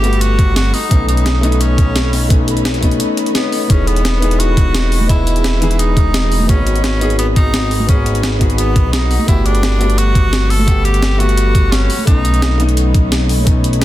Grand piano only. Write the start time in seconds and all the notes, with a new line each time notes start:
Already playing: G3 A3 B3 F#4 G4 F#5
0.02 G3 A3 B3 F#4
0.89 A3 B3 C#4 D#4
1.41 A3 B3 C#4 D#4
2.29 A3 B3 C#4 D#4
2.81 A3 B3 C#4 D#4
3.68 B3 D#4 E4 G#4
4.20 B3 D#4 E4 G#4
5.07 B3 E4 G#4 D#5
5.60 E3 B3 D#4 G#4
6.47 B3 D#4 F#4 G#4
7.00 B3 D#4 F#4 G#4
7.87 B3 D#4 F#4 G#4
8.39 B3 D#4 F#4 G#4
9.26 A3 B3 F#4 G4
9.78 G3 A3 B3 F#4
10.66 A3 B3 G4 F#5
11.18 G3 A3 B3 F#4
12.05 A3 B3 C#4 D#4
12.58 A3 B3 C#4 D#4
13.45 A3 B3 C#4 D#4